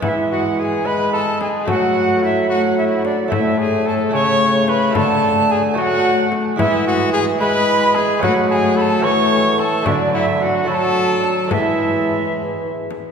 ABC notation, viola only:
X:1
M:6/8
L:1/8
Q:3/8=73
K:Emix
V:1 name="Viola"
G,3 G,3 | A,3 A,3 | A,3 A,3 | A,3 A,3 |
G,3 G,3 | A,3 A,3 | F,3 F,3 | G,4- G, z |]